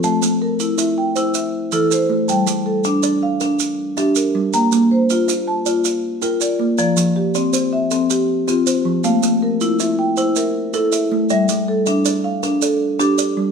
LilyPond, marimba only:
\new Staff \with { instrumentName = "Marimba" } { \time 12/8 \key f \major \tempo 4. = 107 << { <a' a''>4 bes'4. g''4. r8 a'8 c''4 | g''4 a'4. f''4. r8 g'8 bes'4 | bes''4 c''4. a''4. r8 bes'8 d''4 | d''4 g'4. e''4 g'4 f'4. |
f''4 bes'4. g''4 bes'4 a'4. | e''4 a'4. f''4 a'4 g'4. | } \\ { a4 r8 e'4 r8 e'4 r8 e'4 r8 | g4 r8 d'4 r8 d'4 r8 d'4 r8 | bes4 r8 f'4 r8 f'4 r8 f'4 r8 | f4 r8 c'4 r8 c'4 r8 c'4 r8 |
a4 r8 e'4 r8 e'4 r8 e'4 r8 | g4 r8 d'4 r8 d'4 r8 d'4 r8 | } >> }